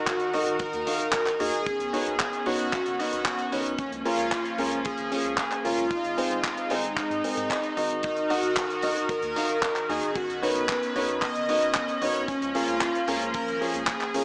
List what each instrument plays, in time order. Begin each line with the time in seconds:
Already playing: string section D#3 D#4 F#4 A#4, analog polysynth F#4
0.07 kick, clap, closed hi-hat
0.20 closed hi-hat
0.34 analog synth bass D#1, grand piano D#4 F#4 A#4 D#5, open hi-hat
0.47 analog synth bass D#1, closed hi-hat
0.59 analog polysynth A#4, kick, closed hi-hat
0.73 analog synth bass D#2, closed hi-hat
0.87 grand piano D#4 F#4 A#4 F5, open hi-hat
1.00 analog synth bass D#1, closed hi-hat
1.13 kick, clap, closed hi-hat
1.26 clap, closed hi-hat
1.40 analog synth bass D#2, grand piano D#4 F#4 A#4 D#5, analog polysynth G#4, open hi-hat
1.53 analog synth bass D#1, closed hi-hat
1.66 string section D#3 B3 C#4, kick, closed hi-hat
1.80 analog synth bass B1, closed hi-hat
1.93 grand piano D#4 F#4 B4 C#5, open hi-hat
2.06 analog synth bass B1, closed hi-hat
2.20 kick, clap, closed hi-hat
2.33 closed hi-hat
2.46 analog synth bass B1, grand piano D#4 F#4 B4 C#5, analog polysynth F#4, open hi-hat
2.59 analog synth bass B1, closed hi-hat
2.72 kick, clap, closed hi-hat
2.86 analog synth bass F#1, closed hi-hat
2.99 grand piano D#4 F#4 B4 D#5, open hi-hat
3.12 analog synth bass B1, analog polysynth F#4, closed hi-hat
3.25 analog polysynth F#4, kick, clap, closed hi-hat
3.39 closed hi-hat
3.52 analog synth bass F#1, grand piano D#4 F#4 B4 C#5, open hi-hat
3.66 analog synth bass B1, closed hi-hat
3.78 string section F3 A#3, analog polysynth C#4, kick, closed hi-hat
3.92 analog synth bass C#2, closed hi-hat
4.05 grand piano C#4 F4 G#4 A#4, analog polysynth F4, open hi-hat
4.19 analog synth bass C#2, closed hi-hat
4.32 kick, clap, closed hi-hat
4.45 closed hi-hat
4.58 analog synth bass C#2, grand piano C#4 F4 G#4 A#4, open hi-hat
4.71 analog synth bass C#2, closed hi-hat
4.85 analog polysynth G#4, kick, closed hi-hat
4.98 analog synth bass G#1, closed hi-hat
5.11 grand piano C#4 F4 G#4 C#5, open hi-hat
5.25 analog synth bass C#2, closed hi-hat
5.38 kick, clap, closed hi-hat
5.51 clap, closed hi-hat
5.64 analog synth bass G#1, grand piano C#4 F4 G#4 A#4, analog polysynth F4, open hi-hat
5.78 analog synth bass C#2, closed hi-hat
5.91 string section G#3 C4 D#4, kick, closed hi-hat
6.04 analog synth bass G#1, closed hi-hat
6.18 grand piano C4 D#4 G#4 C5, open hi-hat
6.31 analog synth bass G#1, closed hi-hat
6.44 kick, clap, closed hi-hat
6.57 closed hi-hat
6.70 analog synth bass G#1, grand piano C4 D#4 G#4 C5, analog polysynth D#4, open hi-hat
6.84 analog synth bass G#1, closed hi-hat
6.97 kick, clap, closed hi-hat
7.11 analog synth bass G#2, closed hi-hat
7.24 grand piano C4 D#4 G#4 A#4, open hi-hat
7.37 analog synth bass G#2, analog polysynth D#4, closed hi-hat
7.50 analog polysynth D#4, kick, clap, closed hi-hat
7.63 closed hi-hat
7.77 analog synth bass G#1, grand piano D#4 F#4 A#4 D#5, open hi-hat
7.90 analog synth bass G#1, closed hi-hat
8.03 string section D#3 F#4 A#4, analog polysynth D#4, kick, closed hi-hat
8.17 analog synth bass D#1, closed hi-hat
8.30 grand piano D#4 F#4 A#4 D#5, analog polysynth F#4, open hi-hat
8.43 analog synth bass D#1, closed hi-hat
8.57 kick, clap, closed hi-hat
8.70 closed hi-hat
8.82 analog synth bass D#1, grand piano D#4 F#4 A#4 D#5, open hi-hat
8.97 analog synth bass D#1, closed hi-hat
9.09 analog polysynth A#4, kick, closed hi-hat
9.22 analog synth bass D#2, closed hi-hat
9.36 grand piano D#4 F#4 A#4 F5, open hi-hat
9.49 analog synth bass D#1, closed hi-hat
9.62 kick, clap, closed hi-hat
9.76 clap, closed hi-hat
9.89 analog synth bass D#2, grand piano D#4 F#4 A#4 D#5, analog polysynth G#4, open hi-hat
10.03 analog synth bass D#1, closed hi-hat
10.15 string section B3 C#4, analog polysynth F#4, kick, closed hi-hat
10.29 analog synth bass B1, closed hi-hat
10.42 grand piano D#4 F#4 B4 C#5, analog polysynth B4, open hi-hat
10.55 analog synth bass B1, closed hi-hat
10.69 kick, clap, closed hi-hat
10.83 closed hi-hat
10.96 analog synth bass B1, grand piano D#4 F#4 B4 C#5, open hi-hat
11.08 analog synth bass B1, closed hi-hat
11.22 analog polysynth D#5, kick, clap, closed hi-hat
11.35 analog synth bass F#1, closed hi-hat
11.49 grand piano D#4 F#4 B4 D#5, open hi-hat
11.62 analog synth bass B1, closed hi-hat
11.74 kick, clap, closed hi-hat
11.88 closed hi-hat
12.02 analog synth bass F#1, grand piano D#4 F#4 B4 C#5, analog polysynth C#5, open hi-hat
12.14 analog synth bass B1, closed hi-hat
12.28 string section F3 A#3, analog polysynth C#4, kick, closed hi-hat
12.42 analog synth bass C#2, closed hi-hat
12.55 grand piano C#4 F4 G#4 A#4, analog polysynth F4, open hi-hat
12.68 analog synth bass C#2, closed hi-hat
12.81 kick, clap, closed hi-hat
12.95 closed hi-hat
13.08 analog synth bass C#2, grand piano C#4 F4 G#4 A#4, open hi-hat
13.21 analog synth bass C#2, closed hi-hat
13.34 analog polysynth A#4, kick, closed hi-hat
13.48 analog synth bass G#1, closed hi-hat
13.61 grand piano C#4 F4 G#4 C#5, analog polysynth G#4, open hi-hat
13.74 analog synth bass C#2, closed hi-hat
13.87 kick, clap, closed hi-hat
14.01 clap, closed hi-hat
14.14 analog synth bass G#1, grand piano C#4 F4 G#4 A#4, open hi-hat